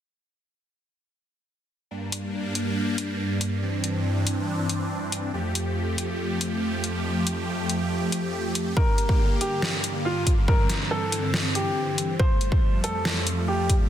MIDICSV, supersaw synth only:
0, 0, Header, 1, 2, 480
1, 0, Start_track
1, 0, Tempo, 428571
1, 2138, Time_signature, 4, 2, 24, 8
1, 15558, End_track
2, 0, Start_track
2, 0, Title_t, "Supersaw synth"
2, 0, Program_c, 0, 81
2, 2138, Note_on_c, 0, 43, 82
2, 2138, Note_on_c, 0, 55, 73
2, 2138, Note_on_c, 0, 58, 72
2, 2138, Note_on_c, 0, 62, 84
2, 4039, Note_off_c, 0, 55, 0
2, 4039, Note_off_c, 0, 58, 0
2, 4039, Note_off_c, 0, 62, 0
2, 4058, Note_on_c, 0, 62, 91
2, 4059, Note_on_c, 0, 52, 71
2, 4059, Note_on_c, 0, 60, 73
2, 5940, Note_off_c, 0, 43, 0
2, 5959, Note_off_c, 0, 52, 0
2, 5959, Note_off_c, 0, 60, 0
2, 5959, Note_off_c, 0, 62, 0
2, 5978, Note_on_c, 0, 53, 72
2, 5979, Note_on_c, 0, 41, 81
2, 5979, Note_on_c, 0, 57, 74
2, 5979, Note_on_c, 0, 67, 88
2, 9780, Note_off_c, 0, 41, 0
2, 9780, Note_off_c, 0, 53, 0
2, 9780, Note_off_c, 0, 57, 0
2, 9818, Note_on_c, 0, 43, 81
2, 9818, Note_on_c, 0, 50, 74
2, 9818, Note_on_c, 0, 58, 72
2, 11694, Note_off_c, 0, 67, 0
2, 11719, Note_off_c, 0, 58, 0
2, 11739, Note_on_c, 0, 52, 72
2, 11739, Note_on_c, 0, 60, 86
2, 13620, Note_off_c, 0, 43, 0
2, 13620, Note_off_c, 0, 50, 0
2, 13639, Note_off_c, 0, 52, 0
2, 13639, Note_off_c, 0, 60, 0
2, 13659, Note_on_c, 0, 41, 79
2, 13659, Note_on_c, 0, 53, 77
2, 13659, Note_on_c, 0, 55, 75
2, 13659, Note_on_c, 0, 57, 88
2, 15558, Note_off_c, 0, 41, 0
2, 15558, Note_off_c, 0, 53, 0
2, 15558, Note_off_c, 0, 55, 0
2, 15558, Note_off_c, 0, 57, 0
2, 15558, End_track
0, 0, End_of_file